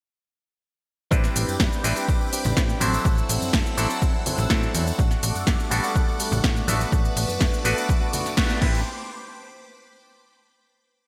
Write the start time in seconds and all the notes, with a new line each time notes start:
1.11 A1 G3 C4 D4 E4 G4 B4 G5 B5 D6, kick, tambourine, shaker
1.23 D4 G4 B4, snare, tambourine, shaker
1.36 A1, open hi-hat, shaker
1.48 F#2, tambourine, shaker
1.60 F#2 C4 D4 G4 B4, kick, snare, shaker
1.72 tambourine, shaker
1.84 A1 G3 C4 D4 E4 G4 B4, open hi-hat, shaker
1.96 D4 G4 B4, tambourine, shaker
2.08 kick, tambourine, shaker
2.20 D4 G4 B4, tambourine
2.32 C4 D4 G4 B4, open hi-hat, shaker
2.44 A1, tambourine, low conga, shaker
2.56 A2 C4 D4 G4 B4, kick, snare, shaker
2.69 tambourine, shaker
2.80 A1 F#3 C4 D4 E4 A4 C5 F#5 E6, open hi-hat, high conga, shaker
2.93 C4 E4 A4, tambourine, shaker
3.05 A1 F#3 C4 E4 A4, kick, tambourine, shaker
3.17 C4 E4 A4, tambourine, shaker
3.29 A1, open hi-hat, shaker
3.42 tambourine, high conga, shaker
3.53 F#2 F#3 C4 E4 A4, kick, snare, tambourine, shaker
3.66 tambourine, shaker
3.77 A1 F#3 C4 D4 E4 A4, open hi-hat, shaker
3.89 C4 E4 A4, tambourine, shaker
4.02 kick, tambourine, high conga, shaker
4.14 C4 E4 A4, tambourine
4.26 F#3 C4 E4 A4, open hi-hat, low conga, shaker
4.38 A1, tambourine, shaker
4.50 A2 F#3 C4 D4 E4 A4, kick, snare, shaker
4.63 tambourine, shaker
4.74 E2 F#3 C4 E4 A4, open hi-hat, shaker
4.86 C4 E4 A4, tambourine, shaker
4.98 A1 G3 A3 D4 F#4 A4 F#5 D6, kick, shaker
5.11 A3 D4 F#4, snare, tambourine, shaker
5.23 A1, open hi-hat, shaker
5.35 F#2, tambourine, shaker
5.47 F#2 G3 A3 D4 F#4, kick, snare, tambourine, shaker
5.60 tambourine, shaker
5.70 A1 G3 A3 B3 D4 F#4 A4, open hi-hat, shaker
5.83 A3 D4 F#4, tambourine, shaker
5.96 kick, tambourine, shaker
6.07 A3 D4 F#4, tambourine
6.19 G3 A3 D4 F#4, open hi-hat, shaker
6.32 A1, tambourine, low conga, shaker
6.43 A2 G3 A3, kick, snare, tambourine, shaker
6.56 tambourine, shaker
6.67 A1 A3 B3 D4 F#4 B4 E5 A5 D6, open hi-hat, high conga, shaker
6.80 D4 F#4, tambourine, shaker
6.92 A1 A3 D4 F#4, kick, tambourine, shaker
7.04 D4 F#4, tambourine, shaker
7.16 A1, open hi-hat, shaker
7.28 F#2, tambourine, high conga, shaker
7.40 F#2 A3 D4 F#4, kick, snare, tambourine, shaker
7.53 tambourine, shaker
7.64 A1 A3 B3 D4 F#4 B4, open hi-hat, shaker
7.77 D4 F#4, tambourine, shaker
7.89 kick, tambourine, high conga, shaker
8.01 D4 F#4, tambourine
8.12 A3 D4 F#4, open hi-hat, low conga, shaker
8.25 snare, tambourine, shaker
8.37 A3 B3 D4 F#4 B4, kick, snare, tambourine, shaker
8.50 tambourine, shaker
8.61 A1 G3 C4 D4 E4 G4 B4 C5 G5 B5 D6, kick, crash
8.75 tambourine